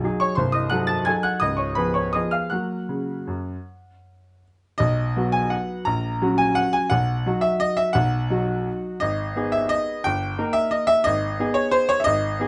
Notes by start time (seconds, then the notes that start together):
0.04 F#3 D#4 G#4
0.20 C#5 C#6
0.35 C1 C2 C5 C6
0.52 D#5 D#6
0.70 F#3 D#4 A4 F#5 F#6
0.87 A5 A6
1.05 F#3 D#4 A4 G#5 G#6
1.23 F#5 F#6
1.40 C#1 C#2 D#5 D#6
1.57 C#5 C#6
1.75 F3 B3 G#4 B4 B5
1.94 C#5 C#6
2.13 F3 B3 G#4 D#5 D#6
2.31 F5 F6
2.50 F#3 A#3 F#4 F#5 F#6
2.89 C#3
3.27 F#2
4.78 B1 D#5
5.17 F#3 B3 F#4
5.32 G#5
5.50 F#5
5.85 A#1 A#5
6.22 F#3 C#4 F#4
6.38 G#5
6.55 F#5
6.73 G#5
6.90 B1 F#5
7.26 F#3 D#4 F#4
7.41 E5
7.60 D#5
7.77 E5
7.93 B1 F#5
8.30 F#3 D#4 F#4
9.00 G#1 D#5
9.36 B3 D#4 G#4
9.52 E5
9.69 D#5
10.04 G1 G5
10.38 A#3 D#4 A#4
10.53 E5
10.71 D#5
10.87 E5
11.04 G#1 D#5
11.40 B3 D#4 G#4
11.54 C#5
11.71 C5
11.89 C#5
12.00 E5
12.04 G#1 D#5
12.40 B3 D#4 G#4